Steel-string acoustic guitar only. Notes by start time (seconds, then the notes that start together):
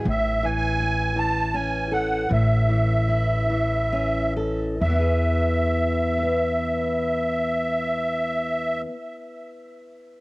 Already playing: E3 E4
0.05 A2
0.43 E3
0.80 E4
1.16 E3
1.54 C#4
1.91 A4
2.29 A2
2.69 E3
3.09 E4
3.50 E3
3.92 C#4
4.36 A4
4.80 E2
4.85 E3
4.90 B3
4.96 E4
5.00 G#4
6.18 B4
6.23 E5